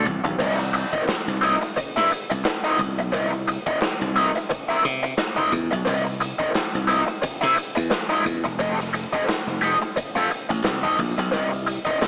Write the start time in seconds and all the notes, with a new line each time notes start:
Already playing: F3 A3 C4 G4
0.06 C2, muted overdriven electric guitar stroke, floor tom
0.24 B1, muted overdriven electric guitar stroke, floor tom
0.39 C2 C4 E4 A#4 D#5, kick, crash
0.59 muted overdriven electric guitar stroke, snare, closed hi-hat
0.73 muted overdriven electric guitar stroke, closed hi-hat
0.93 C4 E4 A#4 D#5, kick, closed hi-hat
1.08 muted overdriven electric guitar stroke, muted slap bass stroke, snare, clap
1.28 C2, closed hi-hat
1.42 C4 E4 A#4 D#5, closed hi-hat
1.61 muted overdriven electric guitar stroke, closed hi-hat
1.76 muted overdriven electric guitar stroke, muted slap bass stroke, kick, closed hi-hat
1.96 G2 C4 E4 A#4 E5, closed hi-hat
2.11 muted overdriven electric guitar stroke, closed hi-hat
2.30 C2, muted overdriven electric guitar stroke, closed hi-hat
2.45 muted overdriven electric guitar stroke, snare, clap
2.64 C4 E4 A#4 D#5, closed hi-hat
2.79 C2, muted overdriven electric guitar stroke, kick, closed hi-hat
2.98 B1, muted overdriven electric guitar stroke, closed hi-hat
3.12 C2 C4 E4 A#4 D#5, kick, closed hi-hat
3.32 muted overdriven electric guitar stroke, closed hi-hat
3.48 muted overdriven electric guitar stroke, closed hi-hat
3.67 C4 E4 A#4 D#5, kick, closed hi-hat
3.82 muted overdriven electric guitar stroke, muted slap bass stroke, snare, clap
4.01 C2, closed hi-hat
4.16 C4 E4 A#4 D#5, closed hi-hat
4.35 muted overdriven electric guitar stroke, closed hi-hat
4.50 muted overdriven electric guitar stroke, kick, closed hi-hat
4.69 C4 E4 A#4 E5, closed hi-hat
4.84 C3, muted overdriven electric guitar stroke, closed hi-hat
5.03 muted overdriven electric guitar stroke, closed hi-hat
5.18 muted overdriven electric guitar stroke, snare, clap
5.36 C4 E4 A#4 D#5, kick, closed hi-hat
5.52 E2, muted overdriven electric guitar stroke, kick, closed hi-hat
5.71 B1, muted overdriven electric guitar stroke, closed hi-hat
5.85 C2 C4 E4 A#4 D#5, kick, closed hi-hat
6.05 muted overdriven electric guitar stroke, closed hi-hat
6.21 muted overdriven electric guitar stroke, closed hi-hat
6.39 C4 E4 A#4 D#5, kick, closed hi-hat
6.54 muted overdriven electric guitar stroke, muted slap bass stroke, snare, clap
6.74 C2, closed hi-hat
6.88 C4 E4 A#4 D#5, closed hi-hat
7.07 muted overdriven electric guitar stroke, closed hi-hat
7.22 muted overdriven electric guitar stroke, muted slap bass stroke, kick, closed hi-hat
7.41 C3 C4 E4 A#4 E5, closed hi-hat
7.57 muted overdriven electric guitar stroke, closed hi-hat
7.75 E2, muted overdriven electric guitar stroke, closed hi-hat
7.90 muted overdriven electric guitar stroke, snare, clap
8.10 C4 E4 A#4 D#5, closed hi-hat
8.25 E2, muted overdriven electric guitar stroke, kick, closed hi-hat
8.44 E1, muted overdriven electric guitar stroke, closed hi-hat
8.59 F1 C4 G4 A4 D#5, kick, closed hi-hat
8.79 muted overdriven electric guitar stroke, snare, closed hi-hat
8.93 muted overdriven electric guitar stroke, closed hi-hat
9.13 C4 G4 A4 D#5, kick, closed hi-hat
9.28 muted overdriven electric guitar stroke, muted slap bass stroke, snare, clap
9.47 F1, closed hi-hat
9.61 C4 G4 A4 D#5, closed hi-hat
9.82 muted overdriven electric guitar stroke, closed hi-hat
9.96 muted overdriven electric guitar stroke, muted slap bass stroke, kick, closed hi-hat
10.16 F2 C4 G4 A4 F5, closed hi-hat
10.30 muted overdriven electric guitar stroke, closed hi-hat
10.49 A1, muted overdriven electric guitar stroke, closed hi-hat
10.64 C2, muted overdriven electric guitar stroke, snare, clap
10.83 C4 G4 A4 D#5, kick, closed hi-hat
10.98 A#1, muted overdriven electric guitar stroke, kick, open hi-hat
11.18 B1, muted overdriven electric guitar stroke, closed hi-hat
11.32 C2 C4 E4 A#4 D#5, kick, closed hi-hat
11.51 muted overdriven electric guitar stroke, closed hi-hat
11.67 muted overdriven electric guitar stroke, closed hi-hat
11.85 C4 E4 A#4 D#5, kick, closed hi-hat
12.01 C2, muted overdriven electric guitar stroke, snare, clap